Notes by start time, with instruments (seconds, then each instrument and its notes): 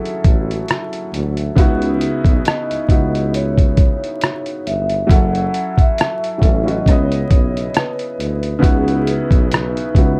Already playing: felt piano F#3 C#4 E4 G#4 A4, vibraphone F#4
0.06 closed hi-hat
0.24 tuba A1, kick, closed hi-hat
0.51 closed hi-hat
0.68 cross-stick, closed hi-hat
0.93 closed hi-hat
1.13 tuba D2, closed hi-hat
1.37 closed hi-hat
1.55 tuba C#2, felt piano C#3 B3 D#4 E4 F#4, kick, closed hi-hat
1.82 closed hi-hat
2.01 closed hi-hat
2.25 tuba B1, kick, closed hi-hat
2.45 vibraphone D#5, cross-stick, closed hi-hat
2.70 tuba C#2, closed hi-hat
2.88 tuba C#2, felt piano C#3 B3 D#4 E4 F#4, kick, closed hi-hat
3.15 closed hi-hat
3.34 vibraphone C#5, closed hi-hat
3.58 kick, closed hi-hat
3.77 kick, closed hi-hat
4.04 closed hi-hat
4.21 cross-stick, closed hi-hat
4.46 closed hi-hat
4.66 tuba G1, vibraphone E5, closed hi-hat
4.89 closed hi-hat
5.07 tuba F#1, felt piano F#3 C#4 E4, kick, closed hi-hat
5.11 felt piano A4, vibraphone F#5
5.35 closed hi-hat
5.54 closed hi-hat
5.78 vibraphone E5, kick, closed hi-hat
5.98 cross-stick, closed hi-hat
6.24 closed hi-hat
6.38 tuba A1, felt piano F#3 C#4 E4 A4, kick
6.43 closed hi-hat
6.63 felt piano F#3 C#4 E4
6.67 felt piano F#4, vibraphone D#5, closed hi-hat
6.86 tuba C#2, felt piano C#3 B3 E4, vibraphone C#5, kick, cross-stick, closed hi-hat
6.91 felt piano D#5
7.12 closed hi-hat
7.31 tuba B1, kick, closed hi-hat
7.57 closed hi-hat
7.74 vibraphone B4, cross-stick, closed hi-hat
7.99 closed hi-hat
8.19 tuba D2, closed hi-hat
8.43 closed hi-hat
8.59 felt piano C#3 B3 D#4 E4, kick
8.63 tuba C#2, felt piano F#4, vibraphone G#4, closed hi-hat
8.88 closed hi-hat
9.07 vibraphone B4, closed hi-hat
9.31 tuba B1, kick, closed hi-hat
9.52 cross-stick, closed hi-hat
9.77 closed hi-hat
9.94 tuba C#2, felt piano C#3 B3 D#4 E4, kick, closed hi-hat
9.98 felt piano F#4